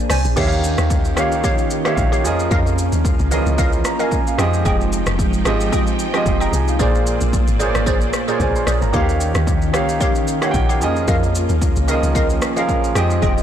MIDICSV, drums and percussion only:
0, 0, Header, 1, 2, 480
1, 0, Start_track
1, 0, Tempo, 535714
1, 330, Time_signature, 4, 2, 24, 8
1, 12032, End_track
2, 0, Start_track
2, 0, Title_t, "Drums"
2, 86, Note_on_c, 9, 37, 94
2, 91, Note_on_c, 9, 46, 82
2, 91, Note_on_c, 9, 82, 96
2, 176, Note_off_c, 9, 37, 0
2, 180, Note_off_c, 9, 46, 0
2, 180, Note_off_c, 9, 82, 0
2, 222, Note_on_c, 9, 82, 47
2, 312, Note_off_c, 9, 82, 0
2, 328, Note_on_c, 9, 82, 65
2, 329, Note_on_c, 9, 49, 96
2, 330, Note_on_c, 9, 36, 114
2, 418, Note_off_c, 9, 49, 0
2, 418, Note_off_c, 9, 82, 0
2, 420, Note_off_c, 9, 36, 0
2, 467, Note_on_c, 9, 82, 48
2, 557, Note_off_c, 9, 82, 0
2, 572, Note_on_c, 9, 82, 94
2, 662, Note_off_c, 9, 82, 0
2, 699, Note_on_c, 9, 82, 59
2, 701, Note_on_c, 9, 37, 93
2, 789, Note_off_c, 9, 82, 0
2, 790, Note_off_c, 9, 37, 0
2, 809, Note_on_c, 9, 36, 95
2, 811, Note_on_c, 9, 82, 84
2, 899, Note_off_c, 9, 36, 0
2, 900, Note_off_c, 9, 82, 0
2, 938, Note_on_c, 9, 82, 50
2, 1028, Note_off_c, 9, 82, 0
2, 1047, Note_on_c, 9, 37, 101
2, 1049, Note_on_c, 9, 82, 87
2, 1136, Note_off_c, 9, 37, 0
2, 1139, Note_off_c, 9, 82, 0
2, 1181, Note_on_c, 9, 82, 60
2, 1271, Note_off_c, 9, 82, 0
2, 1289, Note_on_c, 9, 36, 124
2, 1290, Note_on_c, 9, 82, 84
2, 1378, Note_off_c, 9, 36, 0
2, 1380, Note_off_c, 9, 82, 0
2, 1417, Note_on_c, 9, 82, 50
2, 1507, Note_off_c, 9, 82, 0
2, 1528, Note_on_c, 9, 82, 86
2, 1618, Note_off_c, 9, 82, 0
2, 1659, Note_on_c, 9, 37, 87
2, 1661, Note_on_c, 9, 82, 48
2, 1749, Note_off_c, 9, 37, 0
2, 1750, Note_off_c, 9, 82, 0
2, 1769, Note_on_c, 9, 36, 86
2, 1770, Note_on_c, 9, 82, 61
2, 1858, Note_off_c, 9, 36, 0
2, 1860, Note_off_c, 9, 82, 0
2, 1907, Note_on_c, 9, 82, 53
2, 1997, Note_off_c, 9, 82, 0
2, 2016, Note_on_c, 9, 82, 94
2, 2105, Note_off_c, 9, 82, 0
2, 2145, Note_on_c, 9, 82, 46
2, 2235, Note_off_c, 9, 82, 0
2, 2250, Note_on_c, 9, 82, 67
2, 2251, Note_on_c, 9, 36, 114
2, 2340, Note_off_c, 9, 82, 0
2, 2341, Note_off_c, 9, 36, 0
2, 2390, Note_on_c, 9, 82, 49
2, 2479, Note_off_c, 9, 82, 0
2, 2494, Note_on_c, 9, 82, 91
2, 2583, Note_off_c, 9, 82, 0
2, 2620, Note_on_c, 9, 82, 56
2, 2710, Note_off_c, 9, 82, 0
2, 2730, Note_on_c, 9, 36, 95
2, 2733, Note_on_c, 9, 82, 83
2, 2820, Note_off_c, 9, 36, 0
2, 2823, Note_off_c, 9, 82, 0
2, 2859, Note_on_c, 9, 82, 50
2, 2949, Note_off_c, 9, 82, 0
2, 2970, Note_on_c, 9, 82, 91
2, 3059, Note_off_c, 9, 82, 0
2, 3103, Note_on_c, 9, 82, 60
2, 3193, Note_off_c, 9, 82, 0
2, 3209, Note_on_c, 9, 36, 126
2, 3211, Note_on_c, 9, 82, 84
2, 3299, Note_off_c, 9, 36, 0
2, 3301, Note_off_c, 9, 82, 0
2, 3338, Note_on_c, 9, 82, 50
2, 3428, Note_off_c, 9, 82, 0
2, 3447, Note_on_c, 9, 82, 87
2, 3449, Note_on_c, 9, 37, 94
2, 3537, Note_off_c, 9, 82, 0
2, 3538, Note_off_c, 9, 37, 0
2, 3580, Note_on_c, 9, 82, 47
2, 3669, Note_off_c, 9, 82, 0
2, 3688, Note_on_c, 9, 36, 87
2, 3688, Note_on_c, 9, 82, 60
2, 3778, Note_off_c, 9, 36, 0
2, 3778, Note_off_c, 9, 82, 0
2, 3828, Note_on_c, 9, 82, 52
2, 3918, Note_off_c, 9, 82, 0
2, 3929, Note_on_c, 9, 37, 94
2, 3934, Note_on_c, 9, 82, 95
2, 4019, Note_off_c, 9, 37, 0
2, 4024, Note_off_c, 9, 82, 0
2, 4065, Note_on_c, 9, 82, 44
2, 4154, Note_off_c, 9, 82, 0
2, 4170, Note_on_c, 9, 82, 66
2, 4171, Note_on_c, 9, 36, 109
2, 4260, Note_off_c, 9, 36, 0
2, 4260, Note_off_c, 9, 82, 0
2, 4309, Note_on_c, 9, 82, 50
2, 4399, Note_off_c, 9, 82, 0
2, 4413, Note_on_c, 9, 82, 98
2, 4503, Note_off_c, 9, 82, 0
2, 4538, Note_on_c, 9, 82, 58
2, 4540, Note_on_c, 9, 37, 95
2, 4628, Note_off_c, 9, 82, 0
2, 4630, Note_off_c, 9, 37, 0
2, 4649, Note_on_c, 9, 36, 98
2, 4652, Note_on_c, 9, 82, 81
2, 4739, Note_off_c, 9, 36, 0
2, 4741, Note_off_c, 9, 82, 0
2, 4779, Note_on_c, 9, 82, 48
2, 4869, Note_off_c, 9, 82, 0
2, 4887, Note_on_c, 9, 37, 104
2, 4889, Note_on_c, 9, 82, 85
2, 4976, Note_off_c, 9, 37, 0
2, 4979, Note_off_c, 9, 82, 0
2, 5023, Note_on_c, 9, 82, 61
2, 5113, Note_off_c, 9, 82, 0
2, 5129, Note_on_c, 9, 36, 122
2, 5132, Note_on_c, 9, 82, 83
2, 5219, Note_off_c, 9, 36, 0
2, 5222, Note_off_c, 9, 82, 0
2, 5259, Note_on_c, 9, 82, 52
2, 5349, Note_off_c, 9, 82, 0
2, 5369, Note_on_c, 9, 82, 90
2, 5458, Note_off_c, 9, 82, 0
2, 5500, Note_on_c, 9, 37, 85
2, 5502, Note_on_c, 9, 82, 48
2, 5590, Note_off_c, 9, 37, 0
2, 5591, Note_off_c, 9, 82, 0
2, 5608, Note_on_c, 9, 36, 87
2, 5609, Note_on_c, 9, 82, 61
2, 5698, Note_off_c, 9, 36, 0
2, 5699, Note_off_c, 9, 82, 0
2, 5747, Note_on_c, 9, 82, 51
2, 5836, Note_off_c, 9, 82, 0
2, 5854, Note_on_c, 9, 82, 93
2, 5943, Note_off_c, 9, 82, 0
2, 5985, Note_on_c, 9, 82, 45
2, 6074, Note_off_c, 9, 82, 0
2, 6090, Note_on_c, 9, 36, 107
2, 6090, Note_on_c, 9, 82, 69
2, 6180, Note_off_c, 9, 36, 0
2, 6180, Note_off_c, 9, 82, 0
2, 6228, Note_on_c, 9, 82, 50
2, 6317, Note_off_c, 9, 82, 0
2, 6332, Note_on_c, 9, 82, 101
2, 6421, Note_off_c, 9, 82, 0
2, 6459, Note_on_c, 9, 82, 57
2, 6548, Note_off_c, 9, 82, 0
2, 6568, Note_on_c, 9, 36, 96
2, 6571, Note_on_c, 9, 82, 81
2, 6658, Note_off_c, 9, 36, 0
2, 6661, Note_off_c, 9, 82, 0
2, 6698, Note_on_c, 9, 82, 48
2, 6788, Note_off_c, 9, 82, 0
2, 6810, Note_on_c, 9, 82, 88
2, 6900, Note_off_c, 9, 82, 0
2, 6943, Note_on_c, 9, 82, 59
2, 6944, Note_on_c, 9, 37, 103
2, 7033, Note_off_c, 9, 37, 0
2, 7033, Note_off_c, 9, 82, 0
2, 7048, Note_on_c, 9, 36, 121
2, 7049, Note_on_c, 9, 82, 85
2, 7137, Note_off_c, 9, 36, 0
2, 7139, Note_off_c, 9, 82, 0
2, 7178, Note_on_c, 9, 82, 53
2, 7267, Note_off_c, 9, 82, 0
2, 7287, Note_on_c, 9, 82, 93
2, 7288, Note_on_c, 9, 37, 90
2, 7377, Note_off_c, 9, 82, 0
2, 7378, Note_off_c, 9, 37, 0
2, 7419, Note_on_c, 9, 82, 50
2, 7509, Note_off_c, 9, 82, 0
2, 7527, Note_on_c, 9, 36, 81
2, 7528, Note_on_c, 9, 82, 65
2, 7616, Note_off_c, 9, 36, 0
2, 7618, Note_off_c, 9, 82, 0
2, 7666, Note_on_c, 9, 82, 51
2, 7756, Note_off_c, 9, 82, 0
2, 7767, Note_on_c, 9, 37, 94
2, 7772, Note_on_c, 9, 82, 93
2, 7856, Note_off_c, 9, 37, 0
2, 7861, Note_off_c, 9, 82, 0
2, 7901, Note_on_c, 9, 82, 46
2, 7990, Note_off_c, 9, 82, 0
2, 8006, Note_on_c, 9, 82, 66
2, 8008, Note_on_c, 9, 36, 108
2, 8095, Note_off_c, 9, 82, 0
2, 8098, Note_off_c, 9, 36, 0
2, 8145, Note_on_c, 9, 82, 51
2, 8235, Note_off_c, 9, 82, 0
2, 8248, Note_on_c, 9, 82, 97
2, 8338, Note_off_c, 9, 82, 0
2, 8376, Note_on_c, 9, 82, 60
2, 8378, Note_on_c, 9, 37, 90
2, 8466, Note_off_c, 9, 82, 0
2, 8468, Note_off_c, 9, 37, 0
2, 8487, Note_on_c, 9, 36, 94
2, 8489, Note_on_c, 9, 82, 82
2, 8576, Note_off_c, 9, 36, 0
2, 8578, Note_off_c, 9, 82, 0
2, 8616, Note_on_c, 9, 82, 48
2, 8706, Note_off_c, 9, 82, 0
2, 8725, Note_on_c, 9, 37, 100
2, 8727, Note_on_c, 9, 82, 85
2, 8814, Note_off_c, 9, 37, 0
2, 8817, Note_off_c, 9, 82, 0
2, 8861, Note_on_c, 9, 82, 62
2, 8951, Note_off_c, 9, 82, 0
2, 8966, Note_on_c, 9, 36, 121
2, 8967, Note_on_c, 9, 82, 85
2, 9056, Note_off_c, 9, 36, 0
2, 9057, Note_off_c, 9, 82, 0
2, 9097, Note_on_c, 9, 82, 53
2, 9186, Note_off_c, 9, 82, 0
2, 9207, Note_on_c, 9, 82, 88
2, 9296, Note_off_c, 9, 82, 0
2, 9335, Note_on_c, 9, 37, 87
2, 9337, Note_on_c, 9, 82, 50
2, 9425, Note_off_c, 9, 37, 0
2, 9426, Note_off_c, 9, 82, 0
2, 9445, Note_on_c, 9, 82, 63
2, 9446, Note_on_c, 9, 36, 89
2, 9534, Note_off_c, 9, 82, 0
2, 9535, Note_off_c, 9, 36, 0
2, 9584, Note_on_c, 9, 82, 54
2, 9674, Note_off_c, 9, 82, 0
2, 9691, Note_on_c, 9, 82, 91
2, 9781, Note_off_c, 9, 82, 0
2, 9822, Note_on_c, 9, 82, 45
2, 9911, Note_off_c, 9, 82, 0
2, 9927, Note_on_c, 9, 82, 67
2, 9928, Note_on_c, 9, 36, 116
2, 10016, Note_off_c, 9, 82, 0
2, 10018, Note_off_c, 9, 36, 0
2, 10066, Note_on_c, 9, 82, 52
2, 10156, Note_off_c, 9, 82, 0
2, 10171, Note_on_c, 9, 82, 98
2, 10261, Note_off_c, 9, 82, 0
2, 10297, Note_on_c, 9, 82, 55
2, 10387, Note_off_c, 9, 82, 0
2, 10407, Note_on_c, 9, 36, 97
2, 10410, Note_on_c, 9, 82, 83
2, 10497, Note_off_c, 9, 36, 0
2, 10499, Note_off_c, 9, 82, 0
2, 10537, Note_on_c, 9, 82, 50
2, 10627, Note_off_c, 9, 82, 0
2, 10647, Note_on_c, 9, 82, 89
2, 10737, Note_off_c, 9, 82, 0
2, 10782, Note_on_c, 9, 82, 59
2, 10872, Note_off_c, 9, 82, 0
2, 10887, Note_on_c, 9, 36, 122
2, 10890, Note_on_c, 9, 82, 84
2, 10977, Note_off_c, 9, 36, 0
2, 10979, Note_off_c, 9, 82, 0
2, 11019, Note_on_c, 9, 82, 53
2, 11108, Note_off_c, 9, 82, 0
2, 11127, Note_on_c, 9, 82, 90
2, 11129, Note_on_c, 9, 37, 97
2, 11217, Note_off_c, 9, 82, 0
2, 11218, Note_off_c, 9, 37, 0
2, 11260, Note_on_c, 9, 82, 48
2, 11349, Note_off_c, 9, 82, 0
2, 11367, Note_on_c, 9, 36, 86
2, 11369, Note_on_c, 9, 82, 63
2, 11457, Note_off_c, 9, 36, 0
2, 11458, Note_off_c, 9, 82, 0
2, 11505, Note_on_c, 9, 82, 51
2, 11595, Note_off_c, 9, 82, 0
2, 11607, Note_on_c, 9, 37, 94
2, 11612, Note_on_c, 9, 82, 92
2, 11696, Note_off_c, 9, 37, 0
2, 11701, Note_off_c, 9, 82, 0
2, 11741, Note_on_c, 9, 82, 47
2, 11831, Note_off_c, 9, 82, 0
2, 11848, Note_on_c, 9, 82, 66
2, 11849, Note_on_c, 9, 36, 111
2, 11938, Note_off_c, 9, 36, 0
2, 11938, Note_off_c, 9, 82, 0
2, 11986, Note_on_c, 9, 82, 50
2, 12032, Note_off_c, 9, 82, 0
2, 12032, End_track
0, 0, End_of_file